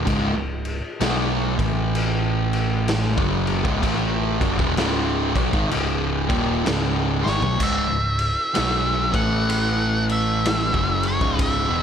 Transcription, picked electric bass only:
0.07 0.34 C#1 medium
0.35 0.80 C#1 medium
1.01 1.56 B1 loud
1.59 3.15 A1 loud
3.18 3.62 F#1 loud
3.65 3.83 C#1 medium
3.83 4.38 A1 loud
4.42 4.59 F#1 loud
4.59 4.76 E1 loud
4.78 5.33 C#1 medium
5.36 5.53 B1 loud
5.54 5.71 G#1 medium
5.73 6.27 C#1 loud
6.30 6.64 D#1 loud
6.68 7.22 C#1 loud
7.26 7.42 G#1 loud
7.43 7.60 B1 medium
7.60 7.88 C#1 loud
7.92 8.35 C#1 medium
8.58 9.11 B1 medium
9.14 10.70 A1 loud
10.74 11.18 F#1 loud
11.22 11.65 C#1 loud
11.69 11.83 E1 loud

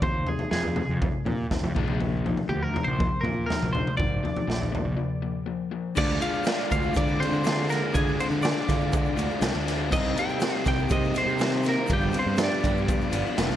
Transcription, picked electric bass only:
0.02 0.21 D#2 medium
0.52 0.81 F2 medium
0.89 1.08 F2 medium
1.25 1.45 A#2 medium
1.62 1.72 F2 medium
1.76 2.33 A#1 medium
2.49 2.69 D2 medium
2.87 3.06 A#1 medium
3.23 3.43 A#2 medium
3.63 3.81 A#1 medium
4.00 4.18 G#1 medium
4.48 4.77 A#1 medium
4.84 4.94 A#1 medium
5.98 6.16 D2 medium
6.71 6.90 D2 medium
6.96 7.24 D3 loud
7.32 7.80 D3 medium
7.94 8.13 D3 loud
8.30 8.40 D3 medium
8.41 8.52 D3 loud
8.69 9.07 D3 medium
9.16 9.26 D2 medium
9.41 9.51 C2 medium
9.55 9.92 D2 medium
9.92 10.11 C2 loud
10.66 10.85 C2 medium
10.91 11.19 C3 loud
11.26 11.74 C3 medium
11.90 12.09 G1 loud
12.26 12.36 G2 medium
12.38 12.48 G2 loud
12.64 13.02 G2 medium
13.13 13.23 G1 medium
13.39 13.48 F1 loud
13.49 13.56 C2 medium

